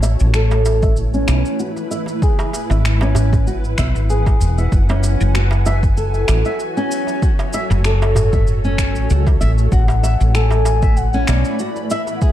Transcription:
Already playing: fretless electric bass A1, ambient pad A3 E4 F#4 B4 C#5 G#5 A5
0.03 nylon-string guitar E5, darbuka ka, cabasa
0.20 fretless electric bass A1, cabasa
0.34 nylon-string guitar A4, finger snap, cabasa
0.51 darbuka tek, cabasa
0.64 ambient pad B5, darbuka tek, cabasa
0.83 nylon-string guitar E5, kick, cabasa
0.97 cabasa
1.14 nylon-string guitar C#4, cabasa
1.28 fretless electric bass B1, finger snap, darbuka tek, cabasa
1.45 cabasa
1.59 nylon-string guitar F#4, cabasa
1.76 darbuka ka, cabasa
1.91 nylon-string guitar E5, cabasa
2.06 darbuka ka, cabasa
2.22 nylon-string guitar G#4, kick, cabasa
2.39 darbuka ka, darbuka tek, cabasa
2.53 darbuka ka, cabasa
2.70 fretless electric bass G#1, nylon-string guitar E5, darbuka tek, cabasa
2.74 ambient pad F#5
2.85 finger snap, cabasa
3.01 nylon-string guitar C#4, darbuka tek, cabasa
3.15 darbuka tek, darbuka dum, cabasa
3.33 ambient pad G#5, kick, darbuka dum, cabasa
3.47 nylon-string guitar F#4, cabasa
3.64 cabasa
3.78 fretless electric bass B1, nylon-string guitar E5, finger snap, kick, cabasa
3.95 fretless electric bass G#1, cabasa
4.10 nylon-string guitar G#4, cabasa
4.26 kick, darbuka tek, cabasa
4.40 fretless electric bass E1, cabasa
4.58 nylon-string guitar E5, cabasa
4.72 fretless electric bass F#1, ambient pad F#4, kick, cabasa
4.89 nylon-string guitar C#4, darbuka ka, darbuka tek, cabasa
5.03 darbuka ka, cabasa
5.20 fretless electric bass F#1, ambient pad C#5, cabasa
5.35 nylon-string guitar F#4, finger snap, cabasa
5.51 darbuka tek, cabasa
5.66 nylon-string guitar E5, darbuka tek, cabasa
5.83 kick, cabasa
5.97 nylon-string guitar A4, cabasa
6.14 cabasa
6.28 fretless electric bass A1, ambient pad A4, finger snap, darbuka tek, cabasa
6.45 nylon-string guitar E5, cabasa
6.60 cabasa
6.77 nylon-string guitar C#4, darbuka ka, cabasa
6.91 cabasa
7.07 darbuka ka, cabasa
7.22 nylon-string guitar F#4, kick, cabasa
7.39 darbuka ka, darbuka tek, cabasa
7.53 nylon-string guitar E5, darbuka ka, cabasa
7.70 fretless electric bass F#1, darbuka tek, cabasa
7.84 nylon-string guitar A4, finger snap, darbuka ka, cabasa
8.02 darbuka tek, cabasa
8.16 darbuka tek, darbuka dum, cabasa
8.33 nylon-string guitar E5, kick, darbuka dum, cabasa
8.47 cabasa
8.65 nylon-string guitar C#4, cabasa
8.78 finger snap, kick, cabasa
8.95 fretless electric bass A1, cabasa
9.10 fretless electric bass C#2, nylon-string guitar F#4, cabasa
9.27 kick, darbuka tek, cabasa
9.41 fretless electric bass A1, nylon-string guitar E5, cabasa
9.58 cabasa
9.72 fretless electric bass A1, ambient pad A3, nylon-string guitar F#4, bansuri F#5, kick, cabasa
9.88 darbuka ka, darbuka tek, cabasa
10.03 nylon-string guitar E5, darbuka ka, cabasa
10.10 ambient pad B5
10.20 fretless electric bass A1, cabasa
10.30 ambient pad E4
10.35 nylon-string guitar A4, bansuri G#5, finger snap, cabasa
10.51 darbuka tek, cabasa
10.65 darbuka tek, cabasa
10.82 ambient pad B4, nylon-string guitar E5, kick, cabasa
10.97 bansuri F#5, cabasa
11.13 nylon-string guitar C#4, cabasa
11.27 fretless electric bass B1, bansuri D5, finger snap, darbuka tek, cabasa
11.45 cabasa
11.59 nylon-string guitar F#4, cabasa
11.76 darbuka ka, cabasa
11.90 bansuri E5, nylon-string guitar E5, cabasa
12.07 darbuka ka, cabasa
12.16 bansuri F#5
12.21 nylon-string guitar G#4, bansuri E5, kick, cabasa

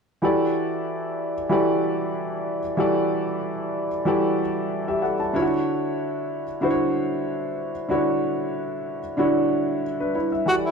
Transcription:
0.22 grand piano E3 E4 F#4 G4 A4 D5
1.49 grand piano E3 E4 F#4 G4 A4 D5
2.77 grand piano E3 E4 F#4 G4 A4 D5
4.05 grand piano E3 E4 F#4 G4 A4 D5
4.88 grand piano G4 E5
5.02 grand piano A4 F#5
5.20 grand piano C#5 A5
5.33 grand piano D3 D4 E4 F4 C#5
5.42 grand piano F#4
6.61 grand piano D3 D4 E4 F#4 C5
6.71 grand piano C#5
7.89 grand piano D3 D4 E4 F#4 C#5
9.17 grand piano D3 D4 E4 F#4 C#5
10.00 grand piano D4 B4
10.15 grand piano E4 C#5
10.32 grand piano E5
10.46 grand piano E3 E4 G4 A4 C#5 F#5, tenor saxophone F#4
10.55 grand piano D5
10.66 tenor saxophone E4

